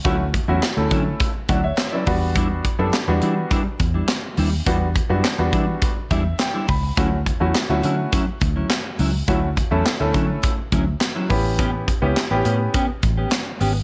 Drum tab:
HH |xxxxxxxo|xxxxxxxo|xxxxxxxo|xxxxxxxo|
CP |--x---x-|--x---x-|--x---x-|--x---x-|
SD |--o---o-|--o---o-|--o---o-|--o---o-|
BD |oo-ooo-o|oo--oo--|oo-ooo-o|oo--oo--|

HH |xxxxxxxo|xxxxxxxo|
CP |--x---x-|--x---x-|
SD |--o---o-|--o---o-|
BD |oo-ooo-o|oo--oo--|